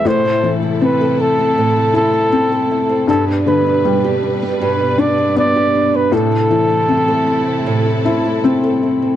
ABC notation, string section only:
X:1
M:4/4
L:1/8
Q:1/4=79
K:Am
V:1 name="String section"
[C,A,EA]8 | [B,,G,DB]8 | [C,A,EA]8 |]